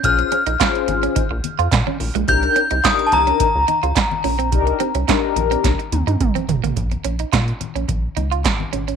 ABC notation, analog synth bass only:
X:1
M:4/4
L:1/16
Q:1/4=107
K:Bbdor
V:1 name="Analog synth bass" clef=bass
B,,,2 z B,,, z2 A,,,2 z B,,, z F,, B,, z B,,, B,,, | C,,2 z C,, z2 C,,2 z D,, z D,, z2 B,,,2 | C,,2 z C,, z2 B,,,2 C,, z E,, G,, G,,, z G,,, =A,,, | B,,,2 B,,,2 B,,2 z B,,, B,,,2 D,,2 A,,,2 A,,,2 |]